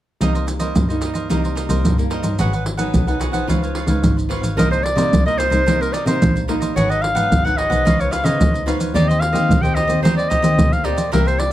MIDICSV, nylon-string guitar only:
0, 0, Header, 1, 2, 480
1, 0, Start_track
1, 0, Key_signature, -3, "minor"
1, 0, Tempo, 546448
1, 179, Time_signature, 4, 2, 24, 8
1, 10126, End_track
2, 0, Start_track
2, 0, Title_t, "Nylon-string guitar"
2, 0, Program_c, 0, 24
2, 187, Note_on_c, 0, 48, 46
2, 190, Note_on_c, 0, 55, 40
2, 196, Note_on_c, 0, 58, 43
2, 198, Note_on_c, 0, 63, 43
2, 505, Note_off_c, 0, 55, 0
2, 507, Note_off_c, 0, 58, 0
2, 510, Note_off_c, 0, 63, 0
2, 527, Note_on_c, 0, 55, 50
2, 532, Note_on_c, 0, 58, 55
2, 536, Note_on_c, 0, 63, 57
2, 641, Note_off_c, 0, 48, 0
2, 665, Note_on_c, 0, 43, 50
2, 735, Note_off_c, 0, 55, 0
2, 738, Note_off_c, 0, 58, 0
2, 739, Note_off_c, 0, 63, 0
2, 788, Note_on_c, 0, 55, 45
2, 793, Note_on_c, 0, 58, 46
2, 796, Note_on_c, 0, 63, 52
2, 1106, Note_off_c, 0, 55, 0
2, 1107, Note_off_c, 0, 58, 0
2, 1110, Note_off_c, 0, 63, 0
2, 1119, Note_off_c, 0, 43, 0
2, 1140, Note_on_c, 0, 48, 44
2, 1144, Note_on_c, 0, 55, 50
2, 1148, Note_on_c, 0, 63, 53
2, 1149, Note_on_c, 0, 58, 44
2, 1463, Note_off_c, 0, 55, 0
2, 1463, Note_off_c, 0, 58, 0
2, 1466, Note_off_c, 0, 63, 0
2, 1482, Note_on_c, 0, 55, 50
2, 1487, Note_on_c, 0, 58, 52
2, 1492, Note_on_c, 0, 63, 52
2, 1597, Note_off_c, 0, 48, 0
2, 1616, Note_on_c, 0, 43, 56
2, 1693, Note_off_c, 0, 55, 0
2, 1695, Note_off_c, 0, 58, 0
2, 1697, Note_off_c, 0, 63, 0
2, 1742, Note_on_c, 0, 55, 52
2, 1746, Note_on_c, 0, 58, 49
2, 1750, Note_on_c, 0, 63, 53
2, 1943, Note_off_c, 0, 55, 0
2, 1945, Note_off_c, 0, 58, 0
2, 1947, Note_off_c, 0, 63, 0
2, 1971, Note_on_c, 0, 54, 50
2, 1973, Note_on_c, 0, 59, 50
2, 1977, Note_on_c, 0, 63, 54
2, 2075, Note_off_c, 0, 43, 0
2, 2101, Note_on_c, 0, 44, 44
2, 2418, Note_off_c, 0, 54, 0
2, 2418, Note_off_c, 0, 59, 0
2, 2421, Note_off_c, 0, 63, 0
2, 2440, Note_on_c, 0, 54, 55
2, 2445, Note_on_c, 0, 59, 54
2, 2449, Note_on_c, 0, 63, 62
2, 2557, Note_off_c, 0, 44, 0
2, 2577, Note_on_c, 0, 51, 55
2, 2652, Note_off_c, 0, 54, 0
2, 2655, Note_off_c, 0, 59, 0
2, 2655, Note_off_c, 0, 63, 0
2, 2694, Note_on_c, 0, 54, 48
2, 2700, Note_on_c, 0, 59, 53
2, 2707, Note_on_c, 0, 63, 53
2, 2899, Note_off_c, 0, 54, 0
2, 2903, Note_off_c, 0, 59, 0
2, 2904, Note_off_c, 0, 63, 0
2, 2912, Note_on_c, 0, 53, 59
2, 2916, Note_on_c, 0, 59, 55
2, 2923, Note_on_c, 0, 63, 59
2, 3035, Note_off_c, 0, 51, 0
2, 3050, Note_on_c, 0, 49, 49
2, 3368, Note_off_c, 0, 53, 0
2, 3369, Note_off_c, 0, 59, 0
2, 3373, Note_off_c, 0, 63, 0
2, 3393, Note_on_c, 0, 53, 44
2, 3399, Note_on_c, 0, 59, 50
2, 3403, Note_on_c, 0, 63, 47
2, 3512, Note_off_c, 0, 49, 0
2, 3532, Note_on_c, 0, 44, 50
2, 3729, Note_off_c, 0, 53, 0
2, 3730, Note_off_c, 0, 59, 0
2, 3734, Note_off_c, 0, 63, 0
2, 3765, Note_on_c, 0, 53, 48
2, 3772, Note_on_c, 0, 59, 44
2, 3772, Note_on_c, 0, 63, 54
2, 3914, Note_off_c, 0, 53, 0
2, 3917, Note_off_c, 0, 63, 0
2, 3918, Note_off_c, 0, 59, 0
2, 3992, Note_off_c, 0, 44, 0
2, 4008, Note_on_c, 0, 48, 46
2, 4013, Note_on_c, 0, 55, 50
2, 4013, Note_on_c, 0, 58, 55
2, 4020, Note_on_c, 0, 63, 52
2, 4241, Note_off_c, 0, 55, 0
2, 4243, Note_off_c, 0, 58, 0
2, 4244, Note_off_c, 0, 63, 0
2, 4355, Note_on_c, 0, 55, 63
2, 4359, Note_on_c, 0, 58, 62
2, 4364, Note_on_c, 0, 63, 65
2, 4471, Note_off_c, 0, 48, 0
2, 4489, Note_on_c, 0, 43, 51
2, 4570, Note_off_c, 0, 55, 0
2, 4571, Note_off_c, 0, 58, 0
2, 4574, Note_off_c, 0, 63, 0
2, 4617, Note_on_c, 0, 55, 57
2, 4621, Note_on_c, 0, 58, 54
2, 4626, Note_on_c, 0, 63, 55
2, 4820, Note_off_c, 0, 55, 0
2, 4822, Note_off_c, 0, 58, 0
2, 4825, Note_off_c, 0, 63, 0
2, 4839, Note_on_c, 0, 55, 55
2, 4842, Note_on_c, 0, 58, 54
2, 4847, Note_on_c, 0, 63, 62
2, 4931, Note_off_c, 0, 55, 0
2, 4933, Note_off_c, 0, 58, 0
2, 4935, Note_off_c, 0, 63, 0
2, 4951, Note_off_c, 0, 43, 0
2, 4977, Note_on_c, 0, 48, 51
2, 4978, Note_on_c, 0, 55, 46
2, 4982, Note_on_c, 0, 58, 50
2, 4986, Note_on_c, 0, 63, 54
2, 5203, Note_off_c, 0, 55, 0
2, 5207, Note_off_c, 0, 58, 0
2, 5208, Note_off_c, 0, 63, 0
2, 5317, Note_on_c, 0, 55, 49
2, 5321, Note_on_c, 0, 58, 48
2, 5327, Note_on_c, 0, 63, 60
2, 5435, Note_off_c, 0, 48, 0
2, 5464, Note_on_c, 0, 43, 56
2, 5650, Note_off_c, 0, 55, 0
2, 5652, Note_off_c, 0, 58, 0
2, 5655, Note_off_c, 0, 63, 0
2, 5694, Note_on_c, 0, 55, 55
2, 5700, Note_on_c, 0, 58, 61
2, 5704, Note_on_c, 0, 63, 70
2, 5899, Note_off_c, 0, 55, 0
2, 5900, Note_off_c, 0, 58, 0
2, 5904, Note_off_c, 0, 63, 0
2, 5918, Note_off_c, 0, 43, 0
2, 5938, Note_on_c, 0, 44, 45
2, 5942, Note_on_c, 0, 54, 55
2, 5943, Note_on_c, 0, 59, 52
2, 5947, Note_on_c, 0, 63, 57
2, 6261, Note_off_c, 0, 54, 0
2, 6263, Note_off_c, 0, 59, 0
2, 6265, Note_off_c, 0, 63, 0
2, 6276, Note_on_c, 0, 54, 59
2, 6283, Note_on_c, 0, 59, 67
2, 6290, Note_on_c, 0, 63, 61
2, 6395, Note_off_c, 0, 44, 0
2, 6418, Note_on_c, 0, 51, 61
2, 6490, Note_off_c, 0, 54, 0
2, 6494, Note_off_c, 0, 59, 0
2, 6495, Note_off_c, 0, 63, 0
2, 6538, Note_on_c, 0, 54, 51
2, 6542, Note_on_c, 0, 59, 51
2, 6548, Note_on_c, 0, 63, 58
2, 6740, Note_off_c, 0, 54, 0
2, 6742, Note_off_c, 0, 59, 0
2, 6745, Note_off_c, 0, 63, 0
2, 6759, Note_on_c, 0, 53, 59
2, 6766, Note_on_c, 0, 59, 65
2, 6770, Note_on_c, 0, 63, 64
2, 6874, Note_off_c, 0, 51, 0
2, 6895, Note_on_c, 0, 49, 50
2, 7211, Note_off_c, 0, 53, 0
2, 7214, Note_off_c, 0, 59, 0
2, 7216, Note_off_c, 0, 63, 0
2, 7243, Note_on_c, 0, 53, 55
2, 7248, Note_on_c, 0, 59, 58
2, 7252, Note_on_c, 0, 63, 55
2, 7353, Note_off_c, 0, 49, 0
2, 7379, Note_on_c, 0, 44, 60
2, 7573, Note_off_c, 0, 53, 0
2, 7574, Note_off_c, 0, 59, 0
2, 7577, Note_off_c, 0, 63, 0
2, 7606, Note_on_c, 0, 53, 61
2, 7611, Note_on_c, 0, 59, 59
2, 7616, Note_on_c, 0, 63, 69
2, 7814, Note_off_c, 0, 53, 0
2, 7817, Note_off_c, 0, 59, 0
2, 7819, Note_off_c, 0, 63, 0
2, 7835, Note_off_c, 0, 44, 0
2, 7858, Note_on_c, 0, 51, 54
2, 7859, Note_on_c, 0, 58, 45
2, 7862, Note_on_c, 0, 60, 46
2, 7867, Note_on_c, 0, 67, 58
2, 8180, Note_off_c, 0, 58, 0
2, 8181, Note_off_c, 0, 60, 0
2, 8184, Note_off_c, 0, 67, 0
2, 8193, Note_on_c, 0, 58, 67
2, 8199, Note_on_c, 0, 60, 62
2, 8203, Note_on_c, 0, 67, 68
2, 8314, Note_off_c, 0, 51, 0
2, 8329, Note_on_c, 0, 46, 55
2, 8407, Note_off_c, 0, 58, 0
2, 8410, Note_off_c, 0, 60, 0
2, 8412, Note_off_c, 0, 67, 0
2, 8456, Note_on_c, 0, 58, 61
2, 8459, Note_on_c, 0, 60, 56
2, 8463, Note_on_c, 0, 67, 62
2, 8659, Note_off_c, 0, 58, 0
2, 8660, Note_off_c, 0, 60, 0
2, 8662, Note_off_c, 0, 67, 0
2, 8672, Note_on_c, 0, 58, 57
2, 8675, Note_on_c, 0, 60, 66
2, 8678, Note_on_c, 0, 67, 67
2, 8767, Note_off_c, 0, 58, 0
2, 8768, Note_off_c, 0, 67, 0
2, 8769, Note_off_c, 0, 60, 0
2, 8790, Note_off_c, 0, 46, 0
2, 8804, Note_on_c, 0, 51, 54
2, 8804, Note_on_c, 0, 58, 55
2, 8806, Note_on_c, 0, 60, 62
2, 8811, Note_on_c, 0, 67, 51
2, 9132, Note_off_c, 0, 58, 0
2, 9134, Note_off_c, 0, 60, 0
2, 9136, Note_off_c, 0, 67, 0
2, 9152, Note_on_c, 0, 58, 60
2, 9157, Note_on_c, 0, 60, 59
2, 9160, Note_on_c, 0, 67, 68
2, 9267, Note_off_c, 0, 51, 0
2, 9293, Note_on_c, 0, 46, 55
2, 9487, Note_off_c, 0, 58, 0
2, 9489, Note_off_c, 0, 60, 0
2, 9490, Note_off_c, 0, 67, 0
2, 9524, Note_on_c, 0, 58, 59
2, 9530, Note_on_c, 0, 60, 55
2, 9531, Note_on_c, 0, 67, 68
2, 9673, Note_off_c, 0, 58, 0
2, 9673, Note_off_c, 0, 60, 0
2, 9675, Note_off_c, 0, 67, 0
2, 9751, Note_off_c, 0, 46, 0
2, 9773, Note_on_c, 0, 58, 53
2, 9774, Note_on_c, 0, 48, 48
2, 9777, Note_on_c, 0, 64, 50
2, 9785, Note_on_c, 0, 67, 62
2, 10097, Note_off_c, 0, 58, 0
2, 10099, Note_off_c, 0, 64, 0
2, 10101, Note_off_c, 0, 67, 0
2, 10126, Note_off_c, 0, 48, 0
2, 10126, End_track
0, 0, End_of_file